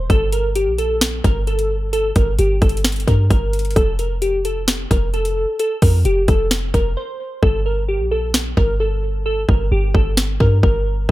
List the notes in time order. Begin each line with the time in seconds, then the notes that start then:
0.10 G1 A4, kick, closed hi-hat
0.32 A#4, closed hi-hat
0.55 G4, closed hi-hat
0.67 A#1
0.78 A4, closed hi-hat
1.01 snare, closed hi-hat
1.24 G1 A#4, kick, closed hi-hat
1.47 A4, closed hi-hat
1.59 closed hi-hat
1.93 A4, closed hi-hat
2.16 G1 A#4, kick, closed hi-hat
2.39 G1 G4, closed hi-hat
2.62 G1 A4, kick, closed hi-hat
2.69 closed hi-hat
2.77 closed hi-hat
2.84 snare, closed hi-hat
2.92 closed hi-hat
2.96 closed hi-hat
3.00 closed hi-hat
3.08 G2 A#4, kick, closed hi-hat
3.30 G1 A#4, kick, closed hi-hat
3.53 closed hi-hat
3.59 closed hi-hat
3.65 closed hi-hat
3.71 closed hi-hat
3.76 F1 A4, kick, closed hi-hat
3.99 A#4, closed hi-hat
4.22 G4, closed hi-hat
4.45 A4, closed hi-hat
4.68 snare, closed hi-hat
4.91 F1 A#4, kick, closed hi-hat
5.14 A4, closed hi-hat
5.25 closed hi-hat
5.59 A4, closed hi-hat
5.82 F2 A#4, kick, open hi-hat
6.05 F1 G4, closed hi-hat
6.28 F1 A4, kick, closed hi-hat
6.51 snare, closed hi-hat
6.74 F1 A#4, kick, closed hi-hat
6.97 C5
7.43 G1 A4, kick
7.66 A#4
7.88 G4
8.00 A#1
8.11 A4
8.34 snare
8.57 G1 A#4, kick
8.80 A4
9.26 A4
9.49 G1 A#4, kick
9.72 G1 G4
9.94 G1 A4, kick
10.17 snare
10.40 G2 A#4, kick
10.63 G1 A#4, kick